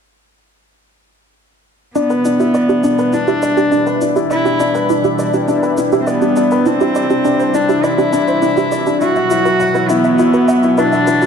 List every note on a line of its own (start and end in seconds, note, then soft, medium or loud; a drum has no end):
1.95 6.62 B2 medium
1.95 6.62 E3 medium
1.95 8.98 G3 medium
1.95 3.15 B3 medium
1.95 2.10 D4 medium
1.95 2.04 D4 medium
1.95 8.98 D4 medium
1.95 8.98 E4 medium
1.95 shaker soft
2.10 2.24 B4 medium
2.10 shaker soft
2.25 2.39 D4 medium
2.25 2.37 E4 medium
2.25 shaker medium
2.40 2.54 E4 medium
2.40 2.48 G4 medium
2.40 shaker soft
2.54 2.59 B4 medium
2.54 2.69 D5 medium
2.54 shaker soft
2.69 2.82 D4 medium
2.69 2.81 G4 medium
2.69 shaker soft
2.84 2.92 D4 medium
2.84 2.98 D4 medium
2.84 shaker medium
2.99 3.13 B4 medium
2.99 shaker soft
3.13 4.02 D4 medium
3.13 3.27 D4 medium
3.13 3.25 E4 medium
3.13 shaker soft
3.28 3.42 E4 medium
3.28 3.36 G4 medium
3.28 shaker soft
3.42 3.47 B4 medium
3.42 3.57 D5 medium
3.42 shaker medium
3.57 3.70 D4 medium
3.57 3.69 G4 loud
3.57 shaker soft
3.72 3.86 D4 medium
3.72 3.80 D4 medium
3.72 shaker soft
3.87 4.01 B4 medium
3.87 shaker soft
4.01 4.16 D4 medium
4.01 4.14 E4 medium
4.01 shaker medium
4.16 4.30 E4 medium
4.16 4.24 G4 medium
4.16 shaker soft
4.31 4.86 E4 loud
4.31 4.36 B4 medium
4.31 4.45 D5 medium
4.31 shaker soft
4.45 4.58 D4 medium
4.45 4.58 G4 medium
4.45 shaker soft
4.60 4.74 D4 medium
4.60 4.68 D4 medium
4.60 shaker medium
4.75 4.89 B4 medium
4.75 shaker soft
4.90 5.04 D4 medium
4.90 5.02 E4 medium
4.90 shaker soft
5.04 5.18 E4 medium
5.04 5.13 G4 medium
5.04 shaker soft
5.19 5.24 B4 medium
5.19 5.33 D5 medium
5.19 shaker medium
5.34 5.47 D4 medium
5.34 5.46 G4 loud
5.34 shaker soft
5.48 5.56 D4 medium
5.48 5.63 D4 medium
5.48 shaker soft
5.63 5.77 B4 medium
5.63 shaker soft
5.78 5.92 D4 medium
5.78 5.90 E4 medium
5.78 shaker medium
5.92 6.07 E4 medium
5.92 6.01 G4 loud
5.92 shaker soft
6.00 6.09 C4 medium
6.07 6.67 B3 medium
6.07 6.12 B4 medium
6.07 6.21 D5 medium
6.07 shaker soft
6.22 6.35 D4 medium
6.22 6.34 G4 medium
6.22 shaker soft
6.36 6.51 D4 medium
6.36 6.45 D4 medium
6.36 shaker medium
6.51 6.66 B4 medium
6.51 shaker soft
6.66 8.99 C3 medium
6.66 11.26 E3 medium
6.66 7.56 C4 medium
6.66 6.80 D4 medium
6.66 6.78 E4 medium
6.66 shaker soft
6.81 6.95 E4 medium
6.81 6.89 G4 loud
6.81 shaker soft
6.95 7.00 C5 medium
6.95 7.10 D5 medium
6.95 shaker medium
7.10 7.23 D4 medium
7.10 7.23 G4 medium
7.10 shaker soft
7.25 7.39 D4 medium
7.25 7.33 D4 medium
7.25 shaker soft
7.39 7.54 C5 medium
7.39 shaker soft
7.54 7.68 D4 medium
7.54 7.86 D4 medium
7.54 7.67 E4 medium
7.54 shaker medium
7.69 7.83 E4 medium
7.69 7.77 G4 loud
7.69 shaker soft
7.84 9.01 E4 medium
7.84 7.89 C5 medium
7.84 7.98 D5 medium
7.84 shaker soft
7.98 8.11 D4 medium
7.98 8.11 G4 medium
7.98 shaker soft
8.13 8.27 D4 medium
8.13 8.21 D4 medium
8.13 shaker medium
8.28 8.42 C5 medium
8.28 shaker soft
8.42 8.57 D4 medium
8.42 8.55 E4 medium
8.42 shaker soft
8.57 8.71 E4 medium
8.57 8.65 G4 medium
8.57 shaker soft
8.72 8.77 C5 medium
8.72 8.86 D5 medium
8.72 shaker medium
8.87 9.01 D4 medium
8.87 8.99 G4 loud
8.87 shaker soft
9.00 11.26 B2 medium
9.00 11.26 F#3 medium
9.00 11.26 E4 medium
9.00 9.09 E4 medium
9.00 9.16 E4 medium
9.00 11.26 F#4 medium
9.00 9.91 F#4 loud
9.00 shaker soft
9.16 9.30 E5 medium
9.16 shaker soft
9.31 9.45 E4 medium
9.31 9.43 F#4 medium
9.31 shaker medium
9.45 9.60 F#4 medium
9.45 9.54 B4 loud
9.45 shaker soft
9.60 9.65 E5 medium
9.60 9.74 F#5 medium
9.60 shaker soft
9.75 9.88 E4 medium
9.75 9.87 B4 loud
9.75 shaker soft
9.90 10.79 B3 loud
9.90 9.98 E4 medium
9.90 10.04 E4 medium
9.90 shaker medium
10.04 10.19 E5 medium
10.04 shaker soft
10.19 10.33 E4 medium
10.19 10.31 F#4 medium
10.19 shaker soft
10.34 10.48 F#4 medium
10.34 10.42 B4 loud
10.34 shaker soft
10.48 10.53 E5 loud
10.48 10.63 F#5 medium
10.48 shaker medium
10.63 10.76 E4 medium
10.63 10.71 B5 medium
10.63 shaker soft
10.78 11.26 D4 medium
10.78 10.92 E4 medium
10.78 10.83 B4 loud
10.78 shaker soft
10.92 11.07 E5 medium
10.92 shaker soft
11.07 11.21 E4 medium
11.07 11.12 B4 medium
11.07 shaker medium
11.22 11.26 F#4 medium
11.22 11.26 B5 medium
11.22 shaker soft